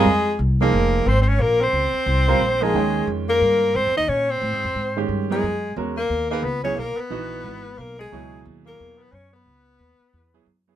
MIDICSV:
0, 0, Header, 1, 6, 480
1, 0, Start_track
1, 0, Tempo, 335758
1, 84, Time_signature, 4, 2, 24, 8
1, 15378, End_track
2, 0, Start_track
2, 0, Title_t, "Soprano saxophone"
2, 0, Program_c, 0, 64
2, 0, Note_on_c, 0, 68, 95
2, 544, Note_off_c, 0, 68, 0
2, 885, Note_on_c, 0, 70, 82
2, 1547, Note_on_c, 0, 72, 96
2, 1569, Note_off_c, 0, 70, 0
2, 1744, Note_off_c, 0, 72, 0
2, 1753, Note_on_c, 0, 72, 63
2, 1833, Note_on_c, 0, 73, 88
2, 1854, Note_off_c, 0, 72, 0
2, 2021, Note_on_c, 0, 70, 90
2, 2043, Note_off_c, 0, 73, 0
2, 2333, Note_on_c, 0, 72, 92
2, 2355, Note_off_c, 0, 70, 0
2, 3759, Note_on_c, 0, 68, 96
2, 3780, Note_off_c, 0, 72, 0
2, 4412, Note_off_c, 0, 68, 0
2, 4712, Note_on_c, 0, 70, 94
2, 5375, Note_on_c, 0, 72, 103
2, 5396, Note_off_c, 0, 70, 0
2, 5667, Note_off_c, 0, 72, 0
2, 5678, Note_on_c, 0, 75, 100
2, 5850, Note_on_c, 0, 73, 96
2, 5871, Note_off_c, 0, 75, 0
2, 6163, Note_on_c, 0, 72, 91
2, 6185, Note_off_c, 0, 73, 0
2, 7184, Note_off_c, 0, 72, 0
2, 7607, Note_on_c, 0, 68, 94
2, 8212, Note_off_c, 0, 68, 0
2, 8566, Note_on_c, 0, 70, 84
2, 9002, Note_off_c, 0, 70, 0
2, 9045, Note_on_c, 0, 70, 80
2, 9220, Note_on_c, 0, 71, 90
2, 9241, Note_off_c, 0, 70, 0
2, 9493, Note_off_c, 0, 71, 0
2, 9502, Note_on_c, 0, 73, 91
2, 9709, Note_on_c, 0, 70, 92
2, 9730, Note_off_c, 0, 73, 0
2, 10009, Note_on_c, 0, 71, 94
2, 10030, Note_off_c, 0, 70, 0
2, 11157, Note_on_c, 0, 70, 87
2, 11178, Note_off_c, 0, 71, 0
2, 11436, Note_off_c, 0, 70, 0
2, 11445, Note_on_c, 0, 68, 88
2, 12050, Note_off_c, 0, 68, 0
2, 12404, Note_on_c, 0, 70, 87
2, 12904, Note_on_c, 0, 71, 77
2, 12926, Note_off_c, 0, 70, 0
2, 13073, Note_on_c, 0, 73, 81
2, 13094, Note_off_c, 0, 71, 0
2, 13356, Note_off_c, 0, 73, 0
2, 13376, Note_on_c, 0, 71, 85
2, 15220, Note_off_c, 0, 71, 0
2, 15378, End_track
3, 0, Start_track
3, 0, Title_t, "Grand piano"
3, 0, Program_c, 1, 0
3, 869, Note_on_c, 1, 53, 65
3, 876, Note_on_c, 1, 58, 60
3, 882, Note_on_c, 1, 63, 58
3, 889, Note_on_c, 1, 68, 66
3, 1490, Note_off_c, 1, 53, 0
3, 1493, Note_off_c, 1, 58, 0
3, 1496, Note_off_c, 1, 63, 0
3, 1500, Note_off_c, 1, 68, 0
3, 3259, Note_on_c, 1, 55, 64
3, 3259, Note_on_c, 1, 60, 64
3, 3268, Note_on_c, 1, 70, 81
3, 3273, Note_on_c, 1, 65, 69
3, 3423, Note_off_c, 1, 55, 0
3, 3423, Note_off_c, 1, 60, 0
3, 3428, Note_off_c, 1, 70, 0
3, 3430, Note_off_c, 1, 65, 0
3, 3744, Note_on_c, 1, 53, 62
3, 3747, Note_on_c, 1, 58, 55
3, 3753, Note_on_c, 1, 63, 59
3, 3762, Note_on_c, 1, 70, 71
3, 3906, Note_off_c, 1, 53, 0
3, 3908, Note_off_c, 1, 58, 0
3, 3910, Note_off_c, 1, 63, 0
3, 3915, Note_off_c, 1, 70, 0
3, 3925, Note_on_c, 1, 51, 64
3, 3932, Note_on_c, 1, 61, 55
3, 3936, Note_on_c, 1, 56, 62
3, 3943, Note_on_c, 1, 79, 69
3, 5255, Note_off_c, 1, 51, 0
3, 5259, Note_off_c, 1, 61, 0
3, 5261, Note_off_c, 1, 56, 0
3, 5264, Note_off_c, 1, 79, 0
3, 7099, Note_on_c, 1, 51, 63
3, 7103, Note_on_c, 1, 56, 68
3, 7108, Note_on_c, 1, 61, 62
3, 7118, Note_on_c, 1, 67, 76
3, 7551, Note_off_c, 1, 51, 0
3, 7553, Note_off_c, 1, 56, 0
3, 7556, Note_off_c, 1, 61, 0
3, 7561, Note_off_c, 1, 67, 0
3, 7580, Note_on_c, 1, 59, 66
3, 7582, Note_on_c, 1, 54, 61
3, 7591, Note_on_c, 1, 64, 55
3, 7596, Note_on_c, 1, 70, 72
3, 7745, Note_off_c, 1, 59, 0
3, 7747, Note_off_c, 1, 54, 0
3, 7751, Note_off_c, 1, 64, 0
3, 7753, Note_off_c, 1, 70, 0
3, 8247, Note_on_c, 1, 56, 60
3, 8250, Note_on_c, 1, 61, 57
3, 8254, Note_on_c, 1, 66, 56
3, 8261, Note_on_c, 1, 70, 71
3, 8514, Note_off_c, 1, 56, 0
3, 8516, Note_off_c, 1, 61, 0
3, 8518, Note_off_c, 1, 66, 0
3, 8521, Note_off_c, 1, 70, 0
3, 9011, Note_on_c, 1, 58, 71
3, 9017, Note_on_c, 1, 63, 60
3, 9026, Note_on_c, 1, 68, 68
3, 9035, Note_on_c, 1, 71, 77
3, 9181, Note_off_c, 1, 58, 0
3, 9184, Note_off_c, 1, 63, 0
3, 9188, Note_off_c, 1, 68, 0
3, 9193, Note_off_c, 1, 71, 0
3, 9490, Note_on_c, 1, 54, 67
3, 9503, Note_on_c, 1, 59, 58
3, 9505, Note_on_c, 1, 64, 63
3, 9512, Note_on_c, 1, 68, 76
3, 9661, Note_off_c, 1, 54, 0
3, 9667, Note_off_c, 1, 59, 0
3, 9668, Note_off_c, 1, 64, 0
3, 9672, Note_off_c, 1, 68, 0
3, 10157, Note_on_c, 1, 52, 87
3, 10169, Note_on_c, 1, 59, 70
3, 10171, Note_on_c, 1, 63, 77
3, 10178, Note_on_c, 1, 66, 91
3, 10880, Note_off_c, 1, 52, 0
3, 10886, Note_off_c, 1, 59, 0
3, 10887, Note_off_c, 1, 63, 0
3, 10890, Note_off_c, 1, 66, 0
3, 11611, Note_on_c, 1, 47, 68
3, 11613, Note_on_c, 1, 54, 75
3, 11622, Note_on_c, 1, 64, 72
3, 11629, Note_on_c, 1, 68, 77
3, 12938, Note_off_c, 1, 47, 0
3, 12939, Note_off_c, 1, 54, 0
3, 12943, Note_off_c, 1, 64, 0
3, 12947, Note_off_c, 1, 68, 0
3, 14779, Note_on_c, 1, 54, 67
3, 14786, Note_on_c, 1, 59, 70
3, 14786, Note_on_c, 1, 64, 68
3, 14788, Note_on_c, 1, 68, 78
3, 14944, Note_off_c, 1, 54, 0
3, 14947, Note_off_c, 1, 59, 0
3, 14947, Note_off_c, 1, 64, 0
3, 14948, Note_off_c, 1, 68, 0
3, 15262, Note_on_c, 1, 54, 61
3, 15266, Note_on_c, 1, 59, 65
3, 15272, Note_on_c, 1, 64, 62
3, 15280, Note_on_c, 1, 68, 68
3, 15378, Note_off_c, 1, 54, 0
3, 15378, Note_off_c, 1, 59, 0
3, 15378, Note_off_c, 1, 64, 0
3, 15378, Note_off_c, 1, 68, 0
3, 15378, End_track
4, 0, Start_track
4, 0, Title_t, "Tenor saxophone"
4, 0, Program_c, 2, 66
4, 0, Note_on_c, 2, 56, 86
4, 531, Note_off_c, 2, 56, 0
4, 871, Note_on_c, 2, 58, 81
4, 1535, Note_on_c, 2, 60, 80
4, 1556, Note_off_c, 2, 58, 0
4, 1727, Note_off_c, 2, 60, 0
4, 1735, Note_on_c, 2, 60, 55
4, 1829, Note_on_c, 2, 61, 70
4, 1851, Note_off_c, 2, 60, 0
4, 2003, Note_on_c, 2, 58, 72
4, 2024, Note_off_c, 2, 61, 0
4, 2299, Note_on_c, 2, 60, 81
4, 2320, Note_off_c, 2, 58, 0
4, 3744, Note_on_c, 2, 56, 73
4, 3765, Note_off_c, 2, 60, 0
4, 4404, Note_off_c, 2, 56, 0
4, 4706, Note_on_c, 2, 58, 84
4, 5368, Note_on_c, 2, 60, 76
4, 5390, Note_off_c, 2, 58, 0
4, 5664, Note_off_c, 2, 60, 0
4, 5670, Note_on_c, 2, 63, 79
4, 5838, Note_on_c, 2, 61, 79
4, 5860, Note_off_c, 2, 63, 0
4, 6140, Note_on_c, 2, 60, 88
4, 6161, Note_off_c, 2, 61, 0
4, 7172, Note_off_c, 2, 60, 0
4, 7586, Note_on_c, 2, 56, 78
4, 8201, Note_off_c, 2, 56, 0
4, 8537, Note_on_c, 2, 58, 81
4, 8986, Note_off_c, 2, 58, 0
4, 9016, Note_on_c, 2, 58, 75
4, 9199, Note_on_c, 2, 59, 83
4, 9221, Note_off_c, 2, 58, 0
4, 9478, Note_off_c, 2, 59, 0
4, 9486, Note_on_c, 2, 61, 74
4, 9663, Note_on_c, 2, 58, 82
4, 9684, Note_off_c, 2, 61, 0
4, 9962, Note_on_c, 2, 59, 76
4, 9983, Note_off_c, 2, 58, 0
4, 11128, Note_on_c, 2, 58, 71
4, 11150, Note_off_c, 2, 59, 0
4, 11412, Note_off_c, 2, 58, 0
4, 11421, Note_on_c, 2, 56, 70
4, 12038, Note_off_c, 2, 56, 0
4, 12376, Note_on_c, 2, 58, 70
4, 12842, Note_on_c, 2, 59, 76
4, 12864, Note_off_c, 2, 58, 0
4, 13034, Note_on_c, 2, 61, 74
4, 13055, Note_off_c, 2, 59, 0
4, 13328, Note_off_c, 2, 61, 0
4, 13336, Note_on_c, 2, 59, 73
4, 15201, Note_off_c, 2, 59, 0
4, 15378, End_track
5, 0, Start_track
5, 0, Title_t, "Upright bass"
5, 0, Program_c, 3, 32
5, 72, Note_on_c, 3, 41, 73
5, 542, Note_off_c, 3, 41, 0
5, 557, Note_on_c, 3, 36, 82
5, 1025, Note_off_c, 3, 36, 0
5, 1041, Note_on_c, 3, 29, 85
5, 1507, Note_off_c, 3, 29, 0
5, 1517, Note_on_c, 3, 32, 83
5, 1979, Note_off_c, 3, 32, 0
5, 1988, Note_on_c, 3, 34, 78
5, 2460, Note_off_c, 3, 34, 0
5, 2471, Note_on_c, 3, 37, 77
5, 2753, Note_off_c, 3, 37, 0
5, 2950, Note_on_c, 3, 36, 86
5, 3421, Note_off_c, 3, 36, 0
5, 3428, Note_on_c, 3, 34, 76
5, 3900, Note_off_c, 3, 34, 0
5, 3914, Note_on_c, 3, 39, 79
5, 4384, Note_off_c, 3, 39, 0
5, 4391, Note_on_c, 3, 41, 85
5, 4863, Note_off_c, 3, 41, 0
5, 4875, Note_on_c, 3, 43, 85
5, 5345, Note_off_c, 3, 43, 0
5, 5361, Note_on_c, 3, 44, 84
5, 5527, Note_off_c, 3, 44, 0
5, 5527, Note_on_c, 3, 41, 61
5, 5668, Note_off_c, 3, 41, 0
5, 5676, Note_on_c, 3, 39, 66
5, 5828, Note_off_c, 3, 39, 0
5, 5839, Note_on_c, 3, 46, 80
5, 6304, Note_off_c, 3, 46, 0
5, 6313, Note_on_c, 3, 45, 85
5, 6474, Note_off_c, 3, 45, 0
5, 6474, Note_on_c, 3, 44, 53
5, 6625, Note_off_c, 3, 44, 0
5, 6634, Note_on_c, 3, 41, 65
5, 6784, Note_off_c, 3, 41, 0
5, 6793, Note_on_c, 3, 44, 76
5, 7261, Note_off_c, 3, 44, 0
5, 7270, Note_on_c, 3, 43, 82
5, 7743, Note_off_c, 3, 43, 0
5, 7762, Note_on_c, 3, 42, 77
5, 8229, Note_off_c, 3, 42, 0
5, 8240, Note_on_c, 3, 40, 86
5, 8708, Note_off_c, 3, 40, 0
5, 8715, Note_on_c, 3, 39, 80
5, 9176, Note_off_c, 3, 39, 0
5, 9184, Note_on_c, 3, 37, 92
5, 9660, Note_off_c, 3, 37, 0
5, 9670, Note_on_c, 3, 35, 78
5, 9954, Note_off_c, 3, 35, 0
5, 10156, Note_on_c, 3, 34, 83
5, 10626, Note_off_c, 3, 34, 0
5, 10641, Note_on_c, 3, 32, 80
5, 11109, Note_off_c, 3, 32, 0
5, 11120, Note_on_c, 3, 35, 88
5, 11588, Note_off_c, 3, 35, 0
5, 11610, Note_on_c, 3, 37, 75
5, 12073, Note_off_c, 3, 37, 0
5, 12086, Note_on_c, 3, 39, 89
5, 12551, Note_off_c, 3, 39, 0
5, 12579, Note_on_c, 3, 40, 84
5, 13034, Note_off_c, 3, 40, 0
5, 13043, Note_on_c, 3, 42, 82
5, 13509, Note_off_c, 3, 42, 0
5, 13517, Note_on_c, 3, 37, 79
5, 13986, Note_off_c, 3, 37, 0
5, 14000, Note_on_c, 3, 39, 78
5, 14279, Note_off_c, 3, 39, 0
5, 14484, Note_on_c, 3, 40, 83
5, 14949, Note_off_c, 3, 40, 0
5, 14955, Note_on_c, 3, 42, 89
5, 15378, Note_off_c, 3, 42, 0
5, 15378, End_track
6, 0, Start_track
6, 0, Title_t, "Muted upright bass strokes"
6, 2764, Note_on_c, 9, 29, 38
6, 2907, Note_off_c, 9, 29, 0
6, 9969, Note_on_c, 9, 29, 42
6, 10112, Note_off_c, 9, 29, 0
6, 14295, Note_on_c, 9, 29, 40
6, 14438, Note_off_c, 9, 29, 0
6, 15378, End_track
0, 0, End_of_file